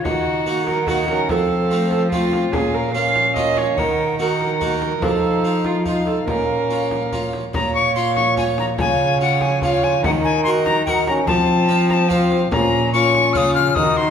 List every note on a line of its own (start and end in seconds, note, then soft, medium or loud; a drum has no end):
0.04 1.31 D#3 medium
0.04 1.25 D#3 soft
0.04 0.88 D#4 medium
0.04 0.65 F#4 medium
0.04 0.87 F#5 medium
0.04 frame drum medium
0.46 0.76 A#3 soft
0.46 0.77 D#4 soft
0.46 0.77 F#4 soft
0.67 0.89 A#4 medium
0.67 frame drum soft
0.87 1.18 A#3 medium
0.87 0.97 D#4 soft
0.87 1.18 D#4 medium
0.87 1.08 F#4 medium
0.87 1.18 F#4 medium
0.87 1.30 F#5 medium
0.87 frame drum medium
1.08 1.30 C#4 medium
1.08 1.32 A#4 medium
1.08 frame drum medium
1.29 2.52 F3 medium
1.29 2.49 F3 medium
1.29 2.11 C4 medium
1.29 1.90 A4 medium
1.29 2.10 F5 medium
1.29 frame drum medium
1.71 2.00 A3 soft
1.71 2.01 C4 soft
1.71 2.01 F4 soft
1.91 2.11 A4 medium
1.91 frame drum soft
2.11 2.42 A3 medium
2.11 2.53 C4 medium
2.11 2.42 C4 soft
2.11 2.54 F4 medium
2.11 2.42 F4 medium
2.11 2.52 F5 soft
2.11 frame drum soft
2.33 frame drum medium
2.52 3.75 A#2 medium
2.52 3.74 A#2 medium
2.52 2.92 C#4 medium
2.52 2.76 G#4 medium
2.52 2.94 F5 medium
2.52 frame drum medium
2.74 2.94 A#4 medium
2.93 3.24 A#3 soft
2.93 3.78 C#4 medium
2.93 3.24 C#4 soft
2.93 3.25 F4 medium
2.93 3.35 F5 medium
2.93 3.79 F5 medium
3.16 frame drum soft
3.36 3.66 A#3 medium
3.36 3.66 C#4 soft
3.36 3.66 F4 medium
3.36 3.59 D#5 medium
3.36 frame drum soft
3.57 3.81 C#5 medium
3.57 frame drum medium
3.77 4.98 D#3 medium
3.77 5.00 D#3 medium
3.77 4.18 D#4 medium
3.77 4.19 A#4 medium
3.77 4.18 F#5 medium
3.77 frame drum medium
4.18 4.49 A#3 soft
4.18 4.73 D#4 medium
4.18 4.49 D#4 soft
4.18 4.50 F#4 soft
4.18 5.05 A#4 medium
4.18 4.73 F#5 medium
4.41 frame drum soft
4.61 4.91 A#3 soft
4.61 4.91 D#4 soft
4.61 4.91 F#4 medium
4.61 frame drum soft
4.82 frame drum soft
5.02 6.24 F3 medium
5.02 6.26 F3 medium
5.02 5.82 D#4 medium
5.02 5.67 A4 medium
5.02 5.82 F5 medium
5.02 frame drum medium
5.45 5.74 D#4 soft
5.45 5.75 F4 soft
5.65 5.86 F4 medium
5.65 frame drum soft
5.86 6.16 D#4 soft
5.86 6.30 D#4 soft
5.86 6.16 F4 soft
5.86 6.06 F4 medium
5.86 6.27 F5 medium
5.86 frame drum soft
6.06 6.27 A4 medium
6.06 frame drum soft
6.28 7.32 A#2 soft
6.28 7.30 A#2 soft
6.28 7.34 C#4 medium
6.28 7.11 A#4 medium
6.28 7.32 F5 soft
6.28 frame drum medium
6.70 7.01 C#4 soft
6.70 7.01 F4 soft
6.91 frame drum medium
7.12 7.43 C#4 soft
7.12 7.43 F4 soft
7.12 frame drum soft
7.33 frame drum soft
7.54 8.75 A#2 medium
7.54 8.80 A#2 medium
7.54 8.75 F4 medium
7.54 8.75 C#5 medium
7.54 7.74 A#5 medium
7.54 frame drum medium
7.74 7.95 C#6 medium
7.95 8.26 C#4 soft
7.95 8.26 F4 medium
7.95 8.15 C6 loud
8.15 8.36 C#6 medium
8.15 frame drum soft
8.37 8.67 C#4 medium
8.37 8.67 F4 medium
8.37 8.43 G#5 medium
8.37 frame drum soft
8.58 8.66 A#5 medium
8.58 frame drum medium
8.77 9.99 C#3 medium
8.77 10.03 C#3 medium
8.77 9.61 F4 medium
8.77 9.60 C#5 medium
8.77 9.20 G#5 medium
8.77 frame drum medium
9.21 9.51 C#4 soft
9.21 9.51 F4 medium
9.21 9.43 F#5 medium
9.41 9.62 G#5 medium
9.41 frame drum medium
9.61 9.92 C#4 medium
9.61 10.06 F4 medium
9.61 9.93 F4 medium
9.61 10.05 C#5 medium
9.61 9.85 F5 medium
9.61 frame drum medium
9.83 10.04 G#5 medium
9.83 frame drum soft
10.03 11.25 D#3 medium
10.03 11.24 D#3 medium
10.03 10.86 D#4 medium
10.03 10.86 A#4 medium
10.03 10.10 F#5 loud
10.03 frame drum medium
10.24 10.43 G#5 medium
10.44 10.75 F#4 medium
10.44 10.76 A#4 medium
10.44 10.50 C6 loud
10.65 10.85 A#5 loud
10.65 frame drum medium
10.85 11.06 D#4 medium
10.85 11.16 F#4 medium
10.85 11.17 A#4 medium
10.85 11.29 A#4 medium
10.85 10.91 G5 medium
10.85 frame drum soft
10.90 11.06 F#5 medium
11.07 11.27 C#4 medium
11.07 11.13 A#5 medium
11.07 frame drum medium
11.27 12.47 F3 medium
11.27 12.49 F3 medium
11.27 12.09 C4 medium
11.27 12.10 F4 medium
11.27 11.88 A5 loud
11.27 frame drum medium
11.68 11.98 C4 medium
11.68 11.98 F4 medium
11.68 11.99 F5 medium
11.89 12.10 A5 loud
11.89 11.94 A#5 medium
11.89 frame drum medium
12.09 12.40 C4 medium
12.09 12.51 C4 medium
12.09 12.40 F4 medium
12.09 12.51 F4 medium
12.09 12.51 F5 medium
12.09 12.40 F5 medium
12.09 frame drum soft
12.32 frame drum medium
12.51 13.37 A#2 medium
12.51 13.30 A#2 medium
12.51 12.90 C#4 medium
12.51 12.90 F4 medium
12.51 12.92 A#5 loud
12.51 frame drum medium
12.93 13.74 C#4 medium
12.93 13.23 C#4 soft
12.93 13.78 F4 medium
12.93 13.23 F4 medium
12.93 13.24 F5 medium
12.93 13.34 C#6 loud
13.15 frame drum medium
13.33 13.72 C#3 medium
13.33 13.76 C#3 medium
13.33 13.65 C#4 medium
13.33 13.65 F4 medium
13.33 13.65 F5 medium
13.33 13.54 D#6 loud
13.33 13.38 F6 loud
13.33 frame drum medium
13.54 13.76 F6 loud
13.54 frame drum medium
13.75 14.10 D#3 medium
13.75 14.10 D#4 medium
13.75 14.10 F#4 medium
13.75 13.98 D#6 loud
13.75 frame drum medium
13.97 14.10 C6 loud